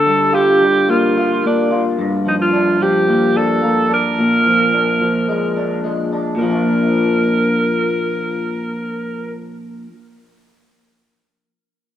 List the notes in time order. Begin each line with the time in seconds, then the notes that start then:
Already playing: D3 A4
0.06 G3
0.33 F4 G4
0.61 G3
0.88 A#3 F4
1.17 F4
1.44 A#3 D4
1.71 F4
1.99 G2
2.26 F3 D#4
2.41 F4
2.53 D4
2.81 F3 G4
3.08 A#3
3.36 D4 A4
3.62 A#3
3.89 D4 A#4
4.19 A#2
4.46 F3
4.74 D4
5.01 F3
5.28 G#3
5.57 D4
5.84 G#3
6.13 D4
6.35 A#2 A#4
6.41 F3
6.50 D4